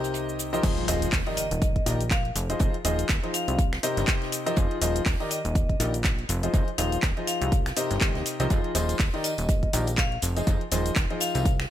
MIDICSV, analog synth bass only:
0, 0, Header, 1, 2, 480
1, 0, Start_track
1, 0, Tempo, 491803
1, 620, Time_signature, 4, 2, 24, 8
1, 11419, End_track
2, 0, Start_track
2, 0, Title_t, "Analog synth bass"
2, 0, Program_c, 0, 38
2, 0, Note_on_c, 0, 36, 87
2, 599, Note_off_c, 0, 36, 0
2, 619, Note_on_c, 0, 29, 97
2, 723, Note_off_c, 0, 29, 0
2, 859, Note_on_c, 0, 27, 93
2, 1049, Note_off_c, 0, 27, 0
2, 1099, Note_on_c, 0, 27, 88
2, 1203, Note_off_c, 0, 27, 0
2, 1477, Note_on_c, 0, 27, 81
2, 1780, Note_off_c, 0, 27, 0
2, 1818, Note_on_c, 0, 34, 97
2, 2259, Note_off_c, 0, 34, 0
2, 2299, Note_on_c, 0, 29, 97
2, 2489, Note_off_c, 0, 29, 0
2, 2539, Note_on_c, 0, 29, 102
2, 2643, Note_off_c, 0, 29, 0
2, 2778, Note_on_c, 0, 27, 96
2, 2969, Note_off_c, 0, 27, 0
2, 3019, Note_on_c, 0, 27, 85
2, 3123, Note_off_c, 0, 27, 0
2, 3397, Note_on_c, 0, 36, 78
2, 3700, Note_off_c, 0, 36, 0
2, 3877, Note_on_c, 0, 31, 84
2, 3955, Note_off_c, 0, 31, 0
2, 4459, Note_on_c, 0, 29, 107
2, 4564, Note_off_c, 0, 29, 0
2, 4700, Note_on_c, 0, 27, 93
2, 4890, Note_off_c, 0, 27, 0
2, 4940, Note_on_c, 0, 27, 85
2, 5044, Note_off_c, 0, 27, 0
2, 5318, Note_on_c, 0, 27, 80
2, 5620, Note_off_c, 0, 27, 0
2, 5660, Note_on_c, 0, 34, 97
2, 6100, Note_off_c, 0, 34, 0
2, 6141, Note_on_c, 0, 29, 103
2, 6330, Note_off_c, 0, 29, 0
2, 6380, Note_on_c, 0, 29, 104
2, 6484, Note_off_c, 0, 29, 0
2, 6620, Note_on_c, 0, 27, 94
2, 6810, Note_off_c, 0, 27, 0
2, 6860, Note_on_c, 0, 27, 81
2, 6964, Note_off_c, 0, 27, 0
2, 7237, Note_on_c, 0, 36, 81
2, 7540, Note_off_c, 0, 36, 0
2, 7718, Note_on_c, 0, 31, 88
2, 7795, Note_off_c, 0, 31, 0
2, 7957, Note_on_c, 0, 39, 89
2, 8035, Note_off_c, 0, 39, 0
2, 8197, Note_on_c, 0, 36, 96
2, 8275, Note_off_c, 0, 36, 0
2, 8300, Note_on_c, 0, 29, 106
2, 8404, Note_off_c, 0, 29, 0
2, 8539, Note_on_c, 0, 27, 93
2, 8730, Note_off_c, 0, 27, 0
2, 8780, Note_on_c, 0, 27, 82
2, 8884, Note_off_c, 0, 27, 0
2, 9158, Note_on_c, 0, 27, 81
2, 9460, Note_off_c, 0, 27, 0
2, 9500, Note_on_c, 0, 34, 93
2, 9940, Note_off_c, 0, 34, 0
2, 9981, Note_on_c, 0, 29, 99
2, 10170, Note_off_c, 0, 29, 0
2, 10220, Note_on_c, 0, 29, 99
2, 10324, Note_off_c, 0, 29, 0
2, 10460, Note_on_c, 0, 27, 95
2, 10650, Note_off_c, 0, 27, 0
2, 10700, Note_on_c, 0, 27, 83
2, 10804, Note_off_c, 0, 27, 0
2, 11078, Note_on_c, 0, 36, 83
2, 11380, Note_off_c, 0, 36, 0
2, 11419, End_track
0, 0, End_of_file